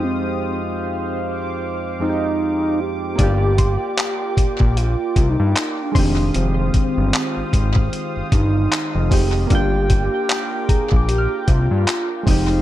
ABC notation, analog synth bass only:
X:1
M:4/4
L:1/16
Q:"Swing 16ths" 1/4=76
K:Gphr
V:1 name="Analog synth bass" clef=bass
z16 | G,,,3 z3 B,,, B,,,2 z C,, G,, z2 F,,,2 | F,,,2 z G,,, z A,,, A,,,2 z G,,, G,,,2 z F,,, F,,,2 | G,,,3 z3 B,,, B,,,2 z C,, G,, z2 F,,,2 |]